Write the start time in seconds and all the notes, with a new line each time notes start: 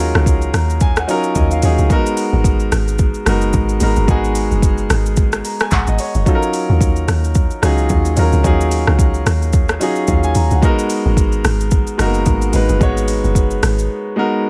Already playing: D#2 F#3 C#4 D#4 F4 G#4 A#4
0.15 C#2, cross-stick
0.26 kick, shaker
0.42 shaker
0.54 D#2 A#5, cross-stick, open hi-hat, shaker
0.70 shaker
0.80 G#5, kick, shaker
0.96 F#5, cross-stick, shaker
1.07 F#3 C#4 D#4 F4 A#4, open hi-hat, shaker
1.23 shaker
1.35 D#2 D#5, kick, shaker
1.51 F5, shaker
1.62 D#2 F#3 C#4 D#4 F4 G#4, open hi-hat, shaker
1.78 C#2, shaker
1.89 G#3 B3 D#4 F#4 A#4, kick, shaker
2.06 shaker
2.17 open hi-hat, shaker
2.33 G#1
2.44 kick, shaker
2.60 shaker
2.72 G#1, cross-stick, open hi-hat, shaker
2.88 shaker
2.98 kick, shaker
3.14 shaker
3.26 F#1 G#3 B3 D#4 F#4 A#4, cross-stick, open hi-hat, shaker
3.41 shaker
3.53 G#1, kick, shaker
3.69 shaker
3.80 G#1 G#3 B3 D#4 F#4 A#4, open hi-hat, shaker
3.96 F#1, shaker
4.07 G#1 G#3 B3 D#4 F#4 G#4, kick, shaker
4.24 shaker
4.35 open hi-hat, shaker
4.51 F#1, shaker
4.62 kick, shaker
4.78 shaker
4.90 G#1, cross-stick, open hi-hat, shaker
5.06 shaker
5.16 kick, shaker
5.32 cross-stick, shaker
5.45 A#5, open hi-hat, shaker
5.60 G#5, cross-stick, shaker
5.71 G#1 F#5, kick, clap, shaker
5.87 G#1 D#5, shaker
5.99 C#5, open hi-hat, shaker
6.14 F#1 D#5, shaker
6.25 F#3 C#4 D#4 F4 A4, kick, shaker
6.35 A#4
6.43 shaker
6.53 open hi-hat, shaker
6.69 D#2
6.81 kick, shaker
6.96 shaker
7.08 D#2, cross-stick, open hi-hat, shaker
7.24 shaker
7.35 kick, shaker
7.50 shaker
7.62 C#2 F#3 C#4 D#4 F4 G#4, cross-stick, open hi-hat, shaker
7.78 shaker
7.89 D#2, kick, shaker
8.05 shaker
8.16 D#2 F#3 C#4 D#4 F4 A#4, open hi-hat, shaker
8.32 C#2, shaker
8.43 D#2 F#3 C#4 D#4 F4 G#4, kick, shaker
8.61 shaker
8.71 open hi-hat, shaker
8.87 C#2, cross-stick
8.99 kick, shaker
9.14 shaker
9.26 D#2, cross-stick, open hi-hat, shaker
9.42 shaker
9.53 kick, shaker
9.69 cross-stick, shaker
9.79 F#3 C#4 D#4 F4 G#4, open hi-hat, shaker
9.96 shaker
10.07 D#2 F5, kick, shaker
10.23 G#5, shaker
10.35 D#2 A#5, open hi-hat, shaker
10.51 C#2 F#5, shaker
10.62 G#3 B3 D#4 F#4 A#4, kick, shaker
10.79 shaker
10.90 open hi-hat, shaker
11.06 G#1
11.17 kick, shaker
11.32 shaker
11.45 G#1, cross-stick, open hi-hat, shaker
11.60 shaker
11.71 kick, shaker
11.87 shaker
11.98 F#1 G#3 A#3 D#4 F#4 A#4, cross-stick, open hi-hat, shaker
12.05 B3
12.14 shaker
12.26 G#1, kick, shaker
12.42 shaker
12.52 G#1 G#3 B3 D#4 F#4 B4, open hi-hat, shaker
12.69 F#1, shaker
12.80 G#1 G#3 B3 D#4 F#4 C#5, kick, shaker
12.97 shaker
13.08 open hi-hat, shaker
13.24 F#1, shaker
13.35 kick, shaker
13.51 shaker
13.63 G#1, cross-stick, open hi-hat, shaker
13.79 shaker
14.16 G#3 B3 D#4 F#4 A#4